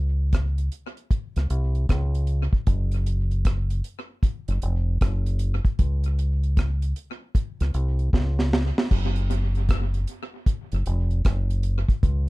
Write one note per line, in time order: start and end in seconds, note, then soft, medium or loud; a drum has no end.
0.00 0.68 C#2 medium
0.33 kick loud
0.33 cross-stick loud
0.33 closed hi-hat medium
0.58 closed hi-hat medium
0.72 closed hi-hat medium
0.97 closed hi-hat soft
1.11 kick loud
1.11 closed hi-hat medium
1.36 1.49 C#2 medium
1.36 cross-stick medium
1.36 closed hi-hat medium
1.50 1.85 C2 medium
1.50 closed hi-hat medium
1.75 closed hi-hat soft
1.89 2.47 C#2 loud
1.89 kick loud
1.89 cross-stick loud
1.89 closed hi-hat medium
2.15 closed hi-hat soft
2.27 closed hi-hat medium
2.53 kick medium
2.67 3.80 F#1 loud
2.67 kick loud
2.67 closed hi-hat medium
2.91 closed hi-hat medium
3.06 closed hi-hat medium
3.31 closed hi-hat soft
3.45 kick loud
3.45 cross-stick loud
3.45 closed hi-hat medium
3.70 closed hi-hat medium
3.84 closed hi-hat medium
4.23 kick loud
4.23 closed hi-hat medium
4.48 4.61 F#1 medium
4.48 closed hi-hat medium
4.62 4.97 F1 medium
4.62 closed hi-hat medium
5.01 5.58 F#1 loud
5.01 kick loud
5.01 cross-stick loud
5.01 closed hi-hat medium
5.26 closed hi-hat medium
5.39 closed hi-hat medium
5.65 kick loud
5.65 closed hi-hat soft
5.79 6.92 C#2 medium
5.79 kick loud
5.79 closed hi-hat medium
6.04 closed hi-hat medium
6.19 closed hi-hat medium
6.43 closed hi-hat soft
6.57 kick loud
6.57 cross-stick loud
6.57 closed hi-hat loud
6.82 closed hi-hat medium
6.96 closed hi-hat medium
7.35 kick loud
7.35 closed hi-hat medium
7.60 7.73 C#2 medium
7.60 cross-stick medium
7.60 closed hi-hat medium
7.74 8.09 C2 medium
7.74 closed hi-hat medium
7.99 closed hi-hat soft
8.13 8.71 C#2 loud
8.13 kick loud
8.13 snare medium
8.39 snare medium
8.53 snare medium
8.78 snare medium
8.91 10.04 F#1 loud
8.91 kick loud
8.91 crash loud
9.16 closed hi-hat medium
9.31 closed hi-hat medium
9.55 closed hi-hat soft
9.69 kick loud
9.69 cross-stick loud
9.69 closed hi-hat medium
9.94 closed hi-hat medium
10.07 closed hi-hat medium
10.46 kick loud
10.46 closed hi-hat medium
10.72 10.85 F#1 medium
10.72 closed hi-hat medium
10.86 11.21 F1 medium
10.86 closed hi-hat medium
11.11 closed hi-hat soft
11.25 11.82 F#1 medium
11.25 kick loud
11.25 cross-stick loud
11.25 closed hi-hat medium
11.50 closed hi-hat medium
11.63 closed hi-hat medium
11.89 kick medium
11.89 closed hi-hat soft
12.03 12.29 C#2 medium
12.03 kick loud
12.03 closed hi-hat medium